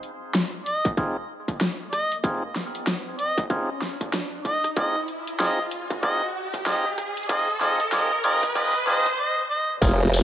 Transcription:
Already playing: riser
0.03 closed hi-hat
0.35 snare, closed hi-hat
0.66 harmonica D#5, closed hi-hat
0.85 kick, closed hi-hat
0.97 tonewheel organ C4 D#4 F4 G#4, kick
1.48 kick, closed hi-hat
1.61 snare, closed hi-hat
1.92 harmonica D#5, cross-stick, closed hi-hat
2.12 closed hi-hat
2.24 tonewheel organ C4 D#4 F4 G#4, kick, closed hi-hat
2.56 snare, closed hi-hat
2.75 closed hi-hat
2.87 snare, closed hi-hat
3.19 harmonica D#5, closed hi-hat
3.38 kick, closed hi-hat
3.50 tonewheel organ C4 D#4 F4 G#4, kick
3.82 snare
4.01 kick, closed hi-hat
4.14 snare, closed hi-hat
4.45 harmonica D#5, kick, closed hi-hat
4.64 cross-stick, closed hi-hat
4.77 tonewheel organ C4 D#4 F4 G#4, harmonica D#5, kick, closed hi-hat
5.08 closed hi-hat
5.27 closed hi-hat
5.40 tonewheel organ C4 D#4 F4 G#4, harmonica D#5, snare, closed hi-hat
5.71 closed hi-hat
5.90 kick, closed hi-hat
6.02 tonewheel organ C4 D#4 F4 G#4, harmonica D#5, kick
6.54 kick, closed hi-hat
6.66 tonewheel organ C4 D#4 F4 G#4, harmonica D#5, snare, closed hi-hat
6.98 cross-stick, closed hi-hat
7.17 closed hi-hat
7.23 closed hi-hat
7.29 tonewheel organ C4 D#4 F4 G#4, harmonica D#5, kick, closed hi-hat
7.39 closed hi-hat
7.61 tonewheel organ C4 D#4 F4 G#4, harmonica D#5, snare, closed hi-hat
7.80 closed hi-hat
7.92 tonewheel organ C4 D#4 F4 G#4, harmonica D#5, snare, closed hi-hat
8.24 tonewheel organ C4 D#4 F4 G#4, harmonica D#5, closed hi-hat
8.43 kick, closed hi-hat
8.55 tonewheel organ C4 D#4 F4 G#4, harmonica D#5, kick, closed hi-hat
8.87 tonewheel organ C4 D#4 F4 G#4, harmonica D#5, snare
9.06 kick, closed hi-hat
9.19 harmonica D#5
9.50 harmonica D#5
9.82 wobble bass F1, tonewheel organ C4 D#4 F4 G#4, kick, closed hi-hat, tambourine, crash
10.14 closed hi-hat, tambourine

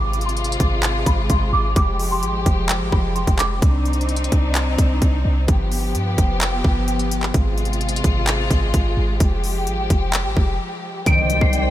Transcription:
Already playing: 808-style bass G#1, string section C3 G#3 F4, celesta D6
0.13 closed hi-hat
0.21 closed hi-hat
0.25 celesta C6, closed hi-hat
0.37 closed hi-hat
0.44 closed hi-hat
0.52 closed hi-hat
0.60 808-style bass G#1, kick, closed hi-hat
0.83 clap, closed hi-hat
1.06 808-style bass G#1, celesta B5, kick, closed hi-hat
1.30 808-style bass G#1, celesta C6, kick, closed hi-hat
1.53 808-style bass G#1, celesta D6
1.76 808-style bass F1, string section F3 G4, celesta D6, kick, closed hi-hat
1.99 open hi-hat
2.11 celesta C6
2.23 808-style bass G#1, closed hi-hat
2.46 808-style bass F1, kick, closed hi-hat
2.69 clap, closed hi-hat
2.81 808-style bass G#1
2.92 808-style bass F1, celesta B5, kick
3.15 celesta C6, closed hi-hat
3.27 808-style bass F1, kick, closed hi-hat
3.39 celesta D6, clap, closed hi-hat
3.62 808-style bass C2, string section C4 D4 D#4, kick, closed hi-hat
3.86 closed hi-hat
3.93 closed hi-hat
4.01 closed hi-hat
4.09 closed hi-hat
4.16 closed hi-hat
4.24 closed hi-hat
4.32 808-style bass C2, kick, closed hi-hat
4.55 clap, closed hi-hat
4.78 808-style bass C2, kick, closed hi-hat
5.02 808-style bass C2, kick, closed hi-hat
5.25 808-style bass C2
5.48 808-style bass G1, string section F3 B3 G4, kick, closed hi-hat
5.72 open hi-hat
5.95 808-style bass G2, closed hi-hat
6.18 808-style bass F1, kick, closed hi-hat
6.41 clap, closed hi-hat
6.64 808-style bass G1, kick
6.88 closed hi-hat
6.99 closed hi-hat
7.11 closed hi-hat
7.23 clap
7.34 808-style bass G#1, string section C3 G#3 F4, kick, closed hi-hat
7.58 closed hi-hat
7.65 closed hi-hat
7.73 closed hi-hat
7.81 closed hi-hat
7.89 closed hi-hat
7.96 closed hi-hat
8.04 808-style bass G#1, kick, closed hi-hat
8.27 clap, closed hi-hat
8.51 808-style bass G#1, kick, closed hi-hat
8.74 808-style bass G#1, kick, closed hi-hat
8.97 808-style bass G#1
9.20 808-style bass F1, string section F3 G4, kick, closed hi-hat
9.44 open hi-hat
9.67 808-style bass G#1, closed hi-hat
9.90 808-style bass F1, kick, closed hi-hat
10.13 clap, closed hi-hat
10.25 808-style bass G#1
10.37 808-style bass F1, kick
11.06 808-style bass C2, harp D#3, string section C5 D5 G5, celesta D7, kick, closed hi-hat, impact
11.30 harp G3, closed hi-hat
11.41 808-style bass C2, celesta C7, kick
11.53 harp C4, closed hi-hat

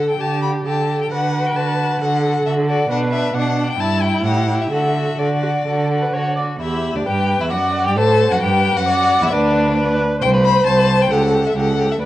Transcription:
Already playing: cello D3, violin A4, viola A4
0.10 violin G5
0.19 cello D3, violin G4 A5, viola G4
0.42 violin G4 B5
0.65 cello D3, violin G4 A5, viola A4
0.88 violin G4
1.01 violin G5
1.11 cello D3, violin F#4 F#5, viola B4
1.35 violin F#4
1.46 violin G5
1.56 cello D3, violin F#4 A5
1.79 violin F#4
2.01 cello D3, violin F#4 F#5, viola A4
2.24 violin F#4
2.45 cello D3, violin F#4 E5
2.68 violin F#4 D5
2.89 cello B2, violin D4 F#5, viola B4
3.12 violin D4 E5
3.34 cello B2, viola D4, violin D4 F#5
3.59 violin D4
3.69 violin G5
3.79 cello G2, viola E4, violin E4 A5
4.02 violin E4 G5
4.24 cello A2, violin G4 F#5
4.49 violin G4
4.61 violin E5
4.70 cello D3, violin F#4 E5, viola A4
4.97 violin F#4
5.18 cello D3, violin F#4 D5, viola A4
5.43 viola F#4, violin F#4
5.65 cello D3, violin F#4, viola A4
5.91 violin F#4
6.02 viola B4
6.13 cello D3, violin F#4, viola C#5
6.37 violin F#4, viola D5
6.60 cello E2, violin E4 E5, viola G4
6.95 cello D2, violin D4 D5
7.06 cello G2, violin G4 G5, viola B4
7.40 cello E2, violin E4 E5
7.50 cello F#2, violin F#4 F#5, viola D5
7.85 cello G2, violin G4 G5
7.97 cello A2, violin A4 A5, viola C5
8.31 cello F#2, violin F#4 F#5
8.42 cello G2, violin G4 G5, viola B4
8.76 cello F#2, violin F#4 F#5
8.89 viola D5
9.22 cello E2, violin E4 E5
9.32 cello D2, violin D4 D5, viola B4
9.78 viola B4
10.22 cello C2, viola C5, violin C5 G5
10.34 violin B4
10.45 violin C5 B5
10.55 violin B4
10.66 cello C2, violin C5 A5
10.78 violin B4
10.89 violin C5
11.00 violin B4 G5
11.11 cello C#2, violin G4 F#5, viola A4
11.23 violin A4
11.34 violin G4
11.45 violin A4 E5
11.56 cello C#2, violin G4 F#5, viola A4
11.68 violin A4
11.79 violin G4
11.89 violin A4 E5
12.01 cello D2, violin B4 D5, viola B4

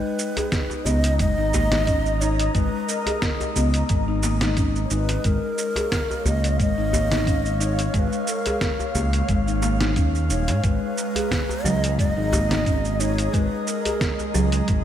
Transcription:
Already playing: analog synth pad G#3, singing bowl D#4 D#5, ney B4
0.19 cabasa
0.28 analog synth pad D#5
0.37 marimba G#4, closed hi-hat, djembe tone, cabasa
0.52 kick, snare, closed hi-hat, cabasa
0.70 djembe tone, cabasa
0.78 analog synth pad A#5
0.85 analog synth bass C#2, marimba B3, ney D#5, djembe bass, cabasa
1.04 closed hi-hat, cabasa
1.19 analog synth bass F#1, marimba G#3, ney D#5, kick, closed hi-hat, cabasa
1.38 analog synth bass G#1, marimba D#4
1.54 marimba A#3, djembe slap, djembe bass, cabasa
1.72 marimba D#4, snare, closed hi-hat, djembe tone, cabasa
1.87 marimba C#4, kick, closed hi-hat, cabasa
2.06 cabasa
2.21 marimba D#4, ney C#5, cabasa
2.40 closed hi-hat, cabasa
2.49 ney C#5
2.54 analog synth bass G#1, marimba G#3, ney B4, kick, closed hi-hat, djembe tone, cabasa
2.88 ney A#4, cabasa
3.06 marimba G#4, closed hi-hat, djembe tone, cabasa
3.22 kick, snare, closed hi-hat, cabasa
3.41 djembe tone, cabasa
3.56 analog synth bass C#2, marimba B3, djembe bass, cabasa
3.74 closed hi-hat, cabasa
3.89 analog synth bass G#1, marimba G#3, kick, closed hi-hat, cabasa
4.08 marimba D#4
4.23 marimba A#3, djembe slap, cabasa
4.41 marimba D#4, snare, closed hi-hat, cabasa
4.57 marimba C#4, kick, closed hi-hat, cabasa
4.76 cabasa
4.85 ney C#5
4.90 analog synth bass G#1, marimba D#4, ney B4, cabasa
5.09 closed hi-hat, djembe slap, cabasa
5.24 analog synth bass G#1, marimba G#3, ney A#4, kick, closed hi-hat, cabasa
5.37 analog synth pad C#5
5.58 cabasa
5.76 marimba G#4, analog synth pad F5, closed hi-hat, djembe tone, cabasa
5.92 kick, snare, closed hi-hat, cabasa
6.10 djembe tone, cabasa
6.25 analog synth bass C#2, marimba A#3, ney D#5, djembe bass, cabasa
6.44 closed hi-hat, cabasa
6.59 analog synth bass G#1, marimba G#3, ney D#5, kick, closed hi-hat, cabasa
6.78 analog synth bass G#1, marimba D#4
6.93 marimba A#3, djembe slap, djembe bass, cabasa
7.12 marimba D#4, snare, closed hi-hat, djembe tone, cabasa
7.27 marimba C#4, kick, closed hi-hat, cabasa
7.45 cabasa
7.60 marimba D#4, ney C#5, cabasa
7.79 closed hi-hat, cabasa
7.94 analog synth bass G#1, marimba G#3, ney C#5, kick, closed hi-hat, djembe tone, cabasa
7.99 ney B4
8.12 cabasa
8.27 ney A#4, cabasa
8.46 marimba G#4, closed hi-hat, djembe tone, cabasa
8.61 kick, snare, closed hi-hat, cabasa
8.80 djembe tone, cabasa
8.95 analog synth bass C#2, marimba A#3, djembe bass, cabasa
9.13 closed hi-hat, cabasa
9.29 analog synth bass G#1, marimba G#3, kick, closed hi-hat, cabasa
9.47 marimba D#4, cabasa
9.62 marimba A#3, djembe slap, cabasa
9.81 marimba D#4, snare, closed hi-hat, cabasa
9.96 analog synth bass D#2, marimba C#4, kick, closed hi-hat, cabasa
10.15 cabasa
10.30 analog synth bass D#1, marimba D#4, ney C#5, cabasa
10.48 analog synth bass G#2, closed hi-hat, djembe slap, cabasa
10.64 analog synth bass G#1, marimba G#3, ney B4, kick, closed hi-hat, cabasa
10.85 analog synth pad G#4 A#5
10.98 cabasa
11.16 marimba G#4, closed hi-hat, djembe tone, cabasa
11.31 kick, snare, closed hi-hat, cabasa
11.49 djembe tone, cabasa
11.64 analog synth bass C#2, marimba F#3, ney D#5, djembe bass, cabasa
11.74 analog synth pad D#5
11.84 closed hi-hat, cabasa
11.98 analog synth bass F#1, marimba G#3, ney D#5, kick, closed hi-hat, cabasa
12.17 analog synth bass G#1, marimba D#4
12.32 marimba A#3, djembe slap, djembe bass, cabasa
12.51 marimba D#4, snare, closed hi-hat, djembe tone, cabasa
12.66 marimba C#4, kick, closed hi-hat, cabasa
12.85 cabasa
13.00 marimba D#4, ney C#5, cabasa
13.18 closed hi-hat, cabasa
13.34 analog synth bass G#1, marimba G#3, ney B4, kick, closed hi-hat, djembe tone, cabasa
13.67 ney A#4, cabasa
13.85 marimba G#4, closed hi-hat, djembe tone, cabasa
14.01 kick, snare, closed hi-hat, cabasa
14.19 djembe tone, cabasa
14.34 analog synth bass C#2, marimba F#3, djembe bass, cabasa
14.52 closed hi-hat, cabasa
14.68 analog synth bass G#1, marimba G#3, kick, closed hi-hat, cabasa

